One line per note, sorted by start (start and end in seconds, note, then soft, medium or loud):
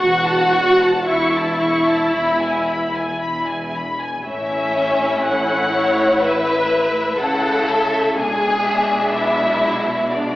0.00 0.95 E1 medium
0.00 0.96 E2 medium
0.00 1.07 F#4 loud
0.00 1.06 F#5 loud
0.00 0.25 C#6 medium
0.27 0.54 A5 medium
0.54 0.81 C#6 medium
0.81 1.08 A5 medium
1.07 2.01 E1 medium
1.07 2.02 E2 medium
1.07 3.74 E4 medium
1.07 3.69 E5 medium
1.07 1.33 C#6 medium
1.35 1.62 A5 medium
1.61 1.88 C#6 medium
1.88 2.14 A5 medium
2.14 3.08 E1 medium
2.14 3.08 E2 medium
2.14 2.39 B5 medium
2.40 2.67 G#5 medium
2.67 2.94 B5 medium
2.95 3.21 G#5 medium
3.21 4.14 E1 medium
3.21 4.14 E2 medium
3.21 3.46 B5 medium
3.47 3.74 G#5 soft
3.76 4.01 B5 medium
4.02 4.26 G#5 medium
4.25 7.16 A1 medium
4.25 7.17 A2 medium
4.25 7.17 A3 medium
4.25 5.69 C#4 medium
4.25 7.17 E4 medium
4.25 5.21 E5 medium
5.26 6.23 F#5 medium
5.73 6.23 C#5 medium
6.21 7.20 B4 medium
6.21 7.22 E5 medium
7.18 8.16 C#2 medium
7.18 8.17 C#3 medium
7.18 8.14 A3 medium
7.18 8.14 E4 medium
7.18 8.15 A4 medium
7.18 7.69 F#5 medium
7.70 8.17 E5 medium
8.15 10.36 B1 medium
8.15 10.36 B2 medium
8.15 10.08 G#3 medium
8.15 10.11 D4 medium
8.15 9.13 G#4 medium
8.15 8.64 G#5 medium
8.65 10.12 E5 medium
9.12 10.11 E4 medium
10.11 10.36 G#3 medium
10.11 10.36 D4 medium
10.11 10.36 D5 medium